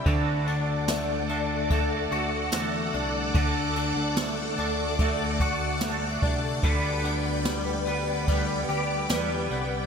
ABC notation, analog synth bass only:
X:1
M:4/4
L:1/16
Q:1/4=73
K:D
V:1 name="Analog synth bass" clef=bass
D,,8- D,,2 D,,2 E,,2 =C,,2 | D,,3 D,,3 D,,8 =C,,2 | D,,8- D,,2 D,,2 E,,2 =C,,2 |]